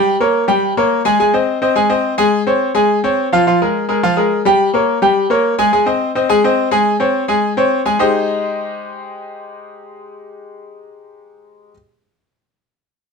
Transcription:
Already playing: G3 G4 G5
0.20 A#3 A#4 C#5
0.48 G3 G4 G5
0.77 A#3 A#4 C#5
1.05 G#3 G#4 G#5
1.20 G#3 G#4 G#5
1.34 C4 C5 D#5
1.62 C4 C5 D#5
1.76 G#3 G#4 G#5
1.90 C4 C5 D#5
2.18 G#3 G#4 G#5
2.47 C4 C5 C#5
2.75 G#3 G#4 G#5
3.04 C4 C5 C#5
3.32 F3 F4 F5
3.47 F3 F4 F5
3.62 G#3 G#4 A#4
3.89 G#3 G#4 A#4
4.03 F3 F4 F5
4.17 G#3 G#4 A#4
4.45 G3 G4 G5
4.74 A#3 A#4 C#5
5.02 G3 G4 G5
5.30 A#3 A#4 C#5
5.59 G#3 G#4 G#5
5.73 G#3 G#4 G#5
5.86 C4 C5 D#5
6.15 C4 C5 D#5
6.29 G#3 G#4 G#5
6.44 C4 C5 D#5
6.71 G#3 G#4 G#5
7.00 C4 C5 C#5
7.28 G#3 G#4 G#5
7.57 C4 C5 C#5
7.86 G#3 G#4 G#5
7.99 G#3 D#4 G4 G#4 C5 D#5

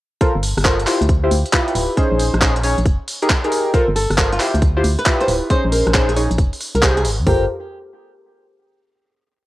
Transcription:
0.21 F4 A4 A#4 C5, kick, closed hi-hat
0.35 G1
0.43 open hi-hat
0.57 G1, cross-stick, open hi-hat
0.65 F4 A4 A#4 C5, kick, clap
0.80 closed hi-hat
0.87 E4 F4 G4 C5, clap, open hi-hat
1.01 D2, closed hi-hat
1.09 kick, closed hi-hat
1.24 E4 F4 G4 C5
1.31 D2, open hi-hat
1.46 closed hi-hat
1.53 E4 F4 G4 B4, kick, clap
1.68 closed hi-hat
1.75 D1, open hi-hat
1.97 C#4 D#4 G#4 C5, kick, closed hi-hat
2.12 A#1
2.19 open hi-hat
2.34 A#1, cross-stick, closed hi-hat
2.41 C#4 D#4 G#4 C5, kick, clap
2.56 closed hi-hat
2.63 C#4 D#4 G#4 C#5, open hi-hat
2.78 A#1, closed hi-hat
2.86 kick, closed hi-hat
3.08 open hi-hat
3.22 D#4 G4 G#4 A#4, closed hi-hat
3.30 kick, clap
3.44 D#4 G4 G#4 A#4, closed hi-hat
3.52 open hi-hat
3.74 F4 A4 A#4 C5, kick, closed hi-hat
3.88 G1
3.96 A4, open hi-hat
4.10 G1, cross-stick, open hi-hat
4.18 F4 A4 A#4 C5, kick, clap
4.32 F4, closed hi-hat
4.40 E4 F4 G4 C5, clap, open hi-hat
4.54 D2, closed hi-hat
4.62 kick, closed hi-hat
4.77 E4 F4 G4 C5
4.84 D2, open hi-hat
4.99 B4, closed hi-hat
5.06 E4 F4 G4 B4, kick, clap
5.20 C5, closed hi-hat
5.28 D1, open hi-hat
5.50 C#4 D#4 G#4 C5, kick, closed hi-hat
5.65 A#1
5.72 A#4, open hi-hat
5.87 A#1, cross-stick, closed hi-hat
5.94 C#4 D#4 G#4 C5, kick, clap
6.09 G#4, cross-stick, closed hi-hat
6.16 C#4 D#4 G#4 C#5, open hi-hat
6.31 A#1, closed hi-hat
6.38 F1, kick, closed hi-hat
6.53 open hi-hat
6.61 open hi-hat
6.75 C2 A#4, closed hi-hat
6.83 D#4 G4 G#4 C5, kick, clap
6.97 G#4, closed hi-hat
7.05 G#1, open hi-hat
7.19 F2
7.27 G1 F4 G4 A4 A#4 C5, kick, floor tom, open hi-hat

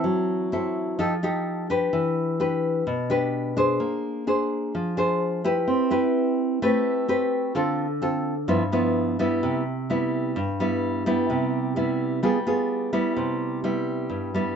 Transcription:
Already playing: C4 E4 A4
0.04 F#3
0.52 C4 E4 A4
0.99 F3 D#4 G4 A4
1.23 D#4 G4 A4
1.70 D4 G4 B4
1.93 E3
2.40 D4 G4 B4
2.87 B2
3.10 D4 G4 B4
3.57 D4 G#4 C5
3.80 A#3
4.27 D4 G#4 C5
4.75 F3
4.97 D4 G#4 C5
5.44 E4 G4 B4
5.68 C4
5.91 E4 G4 B4
6.62 A3 C4 G4 B4
7.08 C4 G4 B4
7.55 D3 C4 F4 A4
8.02 C4 F4 A4
8.48 G2 F3 B3 E4
8.72 F3 B3 E4
9.19 G3 B3 E4
9.43 C3
9.90 G3 B3 E4
10.36 G2
10.60 G3 B3 E4
11.06 G3 B3 E4
11.30 C3
11.76 G3 B3 E4
12.23 G3 B3 F4 G#4
12.47 B3 F4 G#4
12.93 G3 B3 E4
13.17 C3
13.64 G3 B3 E4
14.10 G2
14.35 G3 B3 E4

